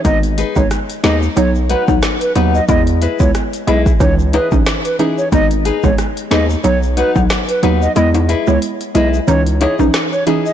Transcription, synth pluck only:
X:1
M:4/4
L:1/16
Q:"Swing 16ths" 1/4=91
K:G#m
V:1 name="Synth pluck"
[G,B,D] z2 [G,B,D]3 [G,B,D]2 [F,B,D] z2 [F,B,D] z2 [F,B,D] z | [G,B,E] z2 [G,B,E]3 [G,B,E]2 [E,CD] z2 [E,CD] z2 [E,CD] z | [G,B,D] z2 [G,B,D]3 [G,B,D]2 [F,B,D] z2 [F,B,D] z2 [F,B,D] z | [G,B,E] z2 [G,B,E]3 [G,B,E]2 [E,CD] z2 [E,CD] z2 [E,CD] z |]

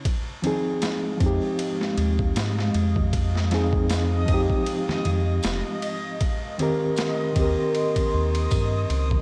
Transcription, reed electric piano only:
X:1
M:4/4
L:1/8
Q:"Swing 16ths" 1/4=78
K:Fdor
V:1 name="Reed electric piano"
z [F,CEA]2 [F,CEG]4- [F,CEG]- | [F,CEG] [F,CEA]2 [F,CEG]4- [F,CEG] | z [E,CGB]2 [E,CGB]4- [E,CGB] |]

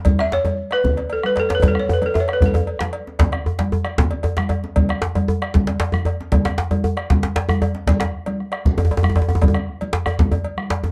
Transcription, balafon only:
X:1
M:12/8
L:1/16
Q:3/8=154
K:A
V:1 name="Balafon"
z2 e2 c4 z2 B4 z2 A2 B2 A3/2 c/2 B2 | A2 c2 B2 A3/2 e/2 c2 B2 A8- A2 z2 | z24 | z24 |
z24 | z24 | z24 |]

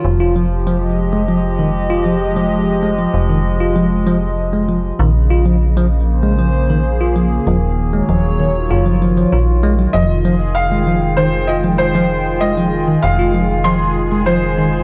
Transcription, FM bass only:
X:1
M:4/4
L:1/8
Q:1/4=97
K:Fm
V:1 name="FM bass" clef=bass
F,,,8- | F,,,2 F,,,6 | B,,,8 | E,,,2 E,,,2 _G,,,2 B,,,2 |
F,,,8- | F,,,2 F,,,6 |]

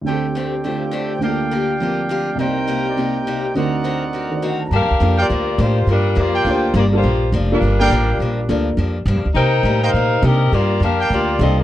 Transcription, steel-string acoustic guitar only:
X:1
M:4/4
L:1/8
Q:"Swing" 1/4=207
K:Gm
V:1 name="Steel-string acoustic guitar"
[D,A,CG] z [D,A,CG] z [D,A,CG] z [D,A,CG] z | [D,B,FG] z [D,B,FG] z [D,B,FG] z [D,B,FG] z | [C,B,EG] z [C,B,EG] z [C,B,EG] z [C,B,EG] z | [D,C^FB] z [D,CFB] z [D,CFB] z [D,CFB] z |
[G,,F,B,D] z [G,,F,B,D] z [G,,F,B,D] z [G,,F,B,D] z | [G,,F,B,D] z [G,,F,B,D] z [G,,F,B,D] z [G,,F,B,D] z | [G,,F,B,D] z [G,,F,B,D] z [G,,F,B,D] z [G,,F,B,D] z | [G,,F,B,D] z [G,,F,B,D] z [G,,F,B,D] z [G,,F,B,D] z |
[C,G,B,E] z [C,G,B,E] z [C,G,B,E] z [C,G,B,E] z | [G,,F,B,D] z [G,,F,B,D] z [G,,F,B,D] z [G,,F,B,D] z |]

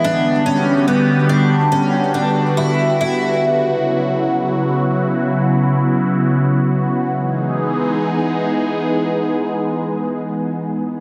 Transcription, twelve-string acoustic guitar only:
X:1
M:4/4
L:1/8
Q:1/4=65
K:F#mix
V:1 name="Twelve-string acoustic guitar"
=D C B, D C D E E | z8 | z8 |]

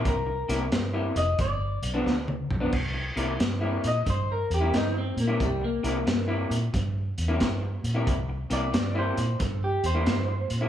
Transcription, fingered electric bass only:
X:1
M:4/4
L:1/8
Q:"Swing" 1/4=90
K:Cmix
V:1 name="Fingered electric bass" clef=bass
C,, C,, G,, F,,, G,,, =B,,, D,, B,,, | C,, C,, G,, B,, G,, E,, G,, B,, | C,, C,, G,, B,, G,, E,, G,, B,, | C,, C,, G,, B,, G,, E,, G,, B,, |]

